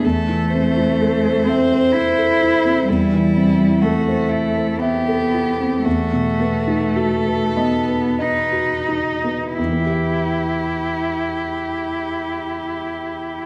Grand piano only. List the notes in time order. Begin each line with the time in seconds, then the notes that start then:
0.06 E2
0.29 E3
0.54 C4
0.77 E4
1.01 A4
1.25 C5
1.49 E5
1.72 C5
1.95 E5
2.18 A4
2.41 E4
2.65 C4
2.90 E2
3.13 E3
3.36 C4
3.60 E4
3.85 A4
4.08 C5
4.32 E5
4.56 C5
4.82 E5
5.08 A4
5.34 E4
5.59 C4
5.86 E2
6.13 B2
6.40 B3
6.68 D#4
6.96 F#4
7.26 B4
7.57 D#5
7.87 B4
8.19 D#5
8.52 F#4
8.89 D#4
9.24 B3
9.59 E2
9.66 E3
9.72 B3
9.79 E4
9.86 G4
9.93 E5